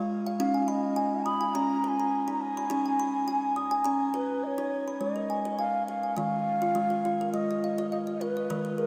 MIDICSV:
0, 0, Header, 1, 3, 480
1, 0, Start_track
1, 0, Tempo, 578592
1, 331, Time_signature, 4, 2, 24, 8
1, 7358, End_track
2, 0, Start_track
2, 0, Title_t, "Bansuri"
2, 0, Program_c, 0, 73
2, 328, Note_on_c, 0, 77, 102
2, 514, Note_off_c, 0, 77, 0
2, 514, Note_on_c, 0, 77, 62
2, 564, Note_on_c, 0, 75, 102
2, 576, Note_off_c, 0, 77, 0
2, 1037, Note_on_c, 0, 83, 93
2, 1050, Note_off_c, 0, 75, 0
2, 1282, Note_on_c, 0, 82, 100
2, 1294, Note_off_c, 0, 83, 0
2, 1520, Note_off_c, 0, 82, 0
2, 1520, Note_on_c, 0, 82, 90
2, 1560, Note_on_c, 0, 80, 98
2, 1569, Note_off_c, 0, 82, 0
2, 1930, Note_off_c, 0, 80, 0
2, 1935, Note_on_c, 0, 82, 57
2, 2001, Note_on_c, 0, 80, 97
2, 2014, Note_off_c, 0, 82, 0
2, 3258, Note_off_c, 0, 80, 0
2, 3446, Note_on_c, 0, 71, 82
2, 3680, Note_on_c, 0, 75, 95
2, 3693, Note_off_c, 0, 71, 0
2, 3707, Note_on_c, 0, 73, 103
2, 3715, Note_off_c, 0, 75, 0
2, 4157, Note_on_c, 0, 75, 95
2, 4169, Note_off_c, 0, 73, 0
2, 4628, Note_off_c, 0, 75, 0
2, 4633, Note_on_c, 0, 77, 94
2, 4863, Note_off_c, 0, 77, 0
2, 4877, Note_on_c, 0, 77, 83
2, 5105, Note_off_c, 0, 77, 0
2, 5123, Note_on_c, 0, 77, 103
2, 6052, Note_off_c, 0, 77, 0
2, 6079, Note_on_c, 0, 75, 96
2, 6531, Note_off_c, 0, 75, 0
2, 6565, Note_on_c, 0, 75, 86
2, 6615, Note_off_c, 0, 75, 0
2, 6753, Note_on_c, 0, 75, 64
2, 6812, Note_on_c, 0, 71, 86
2, 6825, Note_off_c, 0, 75, 0
2, 7287, Note_on_c, 0, 70, 81
2, 7300, Note_off_c, 0, 71, 0
2, 7358, Note_off_c, 0, 70, 0
2, 7358, End_track
3, 0, Start_track
3, 0, Title_t, "Kalimba"
3, 0, Program_c, 1, 108
3, 0, Note_on_c, 1, 56, 87
3, 218, Note_off_c, 1, 56, 0
3, 220, Note_on_c, 1, 77, 68
3, 331, Note_on_c, 1, 61, 93
3, 332, Note_on_c, 1, 63, 86
3, 450, Note_on_c, 1, 80, 52
3, 459, Note_off_c, 1, 77, 0
3, 563, Note_on_c, 1, 83, 65
3, 571, Note_off_c, 1, 63, 0
3, 789, Note_off_c, 1, 80, 0
3, 799, Note_on_c, 1, 80, 70
3, 815, Note_off_c, 1, 80, 0
3, 934, Note_off_c, 1, 83, 0
3, 1043, Note_on_c, 1, 87, 62
3, 1081, Note_off_c, 1, 61, 0
3, 1167, Note_on_c, 1, 80, 62
3, 1285, Note_on_c, 1, 61, 90
3, 1288, Note_on_c, 1, 82, 73
3, 1412, Note_off_c, 1, 80, 0
3, 1414, Note_off_c, 1, 87, 0
3, 1526, Note_on_c, 1, 71, 74
3, 1645, Note_off_c, 1, 82, 0
3, 1655, Note_on_c, 1, 82, 61
3, 1768, Note_off_c, 1, 71, 0
3, 1889, Note_on_c, 1, 63, 75
3, 2008, Note_off_c, 1, 82, 0
3, 2037, Note_off_c, 1, 61, 0
3, 2132, Note_off_c, 1, 63, 0
3, 2134, Note_on_c, 1, 83, 67
3, 2240, Note_on_c, 1, 63, 85
3, 2248, Note_on_c, 1, 61, 80
3, 2369, Note_on_c, 1, 80, 53
3, 2475, Note_off_c, 1, 83, 0
3, 2484, Note_off_c, 1, 63, 0
3, 2485, Note_on_c, 1, 83, 62
3, 2708, Note_off_c, 1, 80, 0
3, 2718, Note_on_c, 1, 80, 67
3, 2735, Note_off_c, 1, 80, 0
3, 2854, Note_off_c, 1, 83, 0
3, 2955, Note_on_c, 1, 87, 62
3, 2998, Note_off_c, 1, 61, 0
3, 3078, Note_on_c, 1, 80, 76
3, 3189, Note_on_c, 1, 82, 73
3, 3198, Note_on_c, 1, 61, 80
3, 3327, Note_off_c, 1, 80, 0
3, 3329, Note_off_c, 1, 87, 0
3, 3433, Note_on_c, 1, 71, 77
3, 3566, Note_off_c, 1, 82, 0
3, 3680, Note_off_c, 1, 71, 0
3, 3800, Note_on_c, 1, 63, 85
3, 3952, Note_off_c, 1, 61, 0
3, 4045, Note_on_c, 1, 83, 55
3, 4047, Note_off_c, 1, 63, 0
3, 4154, Note_on_c, 1, 56, 73
3, 4278, Note_on_c, 1, 70, 53
3, 4290, Note_off_c, 1, 83, 0
3, 4396, Note_on_c, 1, 80, 54
3, 4400, Note_off_c, 1, 56, 0
3, 4524, Note_on_c, 1, 71, 65
3, 4624, Note_off_c, 1, 80, 0
3, 4634, Note_on_c, 1, 80, 54
3, 4638, Note_off_c, 1, 70, 0
3, 4769, Note_off_c, 1, 71, 0
3, 4881, Note_on_c, 1, 71, 58
3, 4996, Note_off_c, 1, 80, 0
3, 5005, Note_on_c, 1, 80, 45
3, 5115, Note_on_c, 1, 56, 75
3, 5115, Note_on_c, 1, 75, 57
3, 5124, Note_off_c, 1, 71, 0
3, 5125, Note_on_c, 1, 51, 77
3, 5361, Note_off_c, 1, 56, 0
3, 5362, Note_off_c, 1, 80, 0
3, 5489, Note_off_c, 1, 75, 0
3, 5490, Note_on_c, 1, 65, 73
3, 5501, Note_off_c, 1, 51, 0
3, 5600, Note_on_c, 1, 56, 88
3, 5726, Note_on_c, 1, 71, 60
3, 5733, Note_off_c, 1, 65, 0
3, 5791, Note_off_c, 1, 56, 0
3, 5849, Note_on_c, 1, 65, 69
3, 5982, Note_on_c, 1, 70, 58
3, 6083, Note_off_c, 1, 71, 0
3, 6086, Note_on_c, 1, 56, 80
3, 6089, Note_off_c, 1, 65, 0
3, 6227, Note_on_c, 1, 75, 57
3, 6327, Note_off_c, 1, 56, 0
3, 6331, Note_off_c, 1, 70, 0
3, 6337, Note_on_c, 1, 77, 62
3, 6445, Note_off_c, 1, 75, 0
3, 6456, Note_on_c, 1, 71, 65
3, 6459, Note_on_c, 1, 75, 58
3, 6556, Note_off_c, 1, 77, 0
3, 6571, Note_on_c, 1, 77, 54
3, 6681, Note_off_c, 1, 75, 0
3, 6696, Note_off_c, 1, 71, 0
3, 6696, Note_on_c, 1, 75, 56
3, 6793, Note_off_c, 1, 77, 0
3, 6812, Note_on_c, 1, 71, 67
3, 6815, Note_on_c, 1, 77, 58
3, 6919, Note_off_c, 1, 75, 0
3, 6942, Note_on_c, 1, 75, 58
3, 7035, Note_off_c, 1, 77, 0
3, 7050, Note_off_c, 1, 71, 0
3, 7052, Note_on_c, 1, 70, 63
3, 7053, Note_on_c, 1, 56, 70
3, 7055, Note_on_c, 1, 51, 81
3, 7163, Note_off_c, 1, 75, 0
3, 7174, Note_on_c, 1, 71, 57
3, 7274, Note_off_c, 1, 70, 0
3, 7285, Note_on_c, 1, 68, 57
3, 7291, Note_off_c, 1, 56, 0
3, 7358, Note_off_c, 1, 51, 0
3, 7358, Note_off_c, 1, 68, 0
3, 7358, Note_off_c, 1, 71, 0
3, 7358, End_track
0, 0, End_of_file